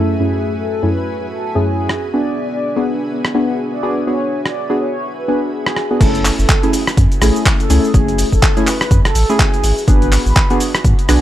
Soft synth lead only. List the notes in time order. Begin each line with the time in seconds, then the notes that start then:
Already playing: A4
0.20 G#4
0.58 A4
0.93 B4
1.31 A4
1.65 G#4
2.14 D5
2.52 D5
3.73 D5
4.07 C#5
4.46 D5
4.80 C#5
5.18 B4
5.52 G#4
6.01 A4
6.39 A4
7.60 A4
7.94 G#4
8.33 A4
8.67 B4
9.05 A4
9.39 G#4
9.88 B4
10.26 B4